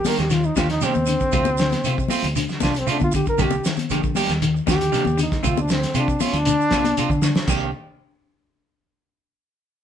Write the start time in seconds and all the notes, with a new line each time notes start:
0.05 D#3 G3 A#3 D4 G4 A#4, open hi-hat, high conga, low conga, shekere
0.18 D#2 G4, snare, closed hi-hat, low conga, claves, shekere
0.30 D#3 F4, snare, closed hi-hat, shekere
0.43 D#4, muted clean electric guitar stroke, shekere
0.56 D#2 D3 D#3 A#3 D4 F4 G4, kick, snare, closed hi-hat, high conga, claves, shekere
0.69 D#4, muted clean electric guitar stroke, snare, closed hi-hat, shekere
0.81 C3 D#3 A#3 C4 D4 G4, snare, closed hi-hat, high conga, shekere
0.94 D#2, muted clean electric guitar stroke, high conga, shekere
1.06 D3, muted clean electric guitar stroke, closed hi-hat, claves, shekere
1.19 muted clean electric guitar stroke, kick, shekere
1.32 D2 C3 A3 C4 F4, kick, snare, closed hi-hat, low conga, claves, shekere
1.45 high conga, shekere
1.57 D3, muted clean electric guitar stroke, snare, closed hi-hat, shekere
1.71 muted clean electric guitar stroke, snare, closed hi-hat, high conga, shekere
1.84 C3 A3 C4 F4, closed hi-hat, claves, shekere
1.98 muted clean electric guitar stroke, kick, shekere
2.08 F3 A3 C4 F4, open hi-hat, high conga, low conga, shekere
2.23 D2, closed hi-hat, low conga, claves, shekere
2.36 D3, closed hi-hat, shekere
2.48 muted clean electric guitar stroke, snare, shekere
2.60 C2 C3 A3 C4 D4 F4, kick, snare, closed hi-hat, high conga, claves, shekere
2.74 muted clean electric guitar stroke, closed hi-hat, shekere
2.79 C4
2.87 C3 A3 C4 D4 F4, closed hi-hat, shekere
2.99 D3, muted clean electric guitar stroke, kick, high conga, shekere
3.04 F4
3.12 D3, muted clean electric guitar stroke, kick, closed hi-hat, shekere
3.16 G4, claves
3.26 A#4, muted clean electric guitar stroke, kick, shekere
3.38 C2 D3 D#3 A#3 D4 G4, kick, snare, closed hi-hat, low conga, claves, shekere
3.42 G4
3.51 high conga, shekere
3.64 D#3, muted clean electric guitar stroke, snare, closed hi-hat, shekere
3.76 muted clean electric guitar stroke, closed hi-hat, high conga, shekere
3.90 A#1 D3 D#3 A#3 D4 G4, closed hi-hat, claves, shekere
4.02 muted clean electric guitar stroke, kick, shekere
4.15 D#3 G3 A#3 D4 G4, open hi-hat, high conga, low conga, shekere
4.27 D#2, snare, closed hi-hat, low conga, claves, shekere
4.42 D#3, closed hi-hat, shekere
4.54 muted clean electric guitar stroke, shekere
4.67 D#2 D3 D#3 A#3 D4 G4, kick, snare, closed hi-hat, high conga, claves, shekere
4.81 closed hi-hat, shekere
4.92 C3 D#3 A#3 D4 G4, snare, closed hi-hat, shekere
5.05 D#2, muted clean electric guitar stroke, high conga, shekere
5.17 D3, muted clean electric guitar stroke, closed hi-hat, claves, shekere
5.23 D#4
5.30 muted clean electric guitar stroke, kick, snare, shekere
5.43 D2 C3 A3 C4 F4, kick, closed hi-hat, low conga, claves, shekere
5.48 F4
5.57 D4, high conga, shekere
5.68 D3, muted clean electric guitar stroke, snare, closed hi-hat, shekere
5.72 C4
5.82 muted clean electric guitar stroke, snare, closed hi-hat, shekere
5.94 C3 A3 C4 F4, closed hi-hat, claves, shekere
5.98 D4
6.08 muted clean electric guitar stroke, kick, shekere
6.20 F3 A3 D4 F4, muted clean electric guitar stroke, open hi-hat, high conga, low conga, shekere
6.33 D2, closed hi-hat, low conga, claves, shekere
6.45 D3, closed hi-hat, shekere
6.60 muted clean electric guitar stroke, shekere
6.70 C2 C3 A3 C4 F4, kick, snare, closed hi-hat, high conga, claves, shekere
6.85 muted clean electric guitar stroke, closed hi-hat, high conga, shekere
6.97 C3 C4 F4, closed hi-hat, shekere
7.10 D3, muted clean electric guitar stroke, kick, shekere
7.22 D3, muted clean electric guitar stroke, snare, low conga, claves, shekere
7.35 muted clean electric guitar stroke, snare, low conga, shekere
7.47 C2 D#3 A#3 D4 G4, muted clean electric guitar stroke, kick, crash, low conga, claves, shekere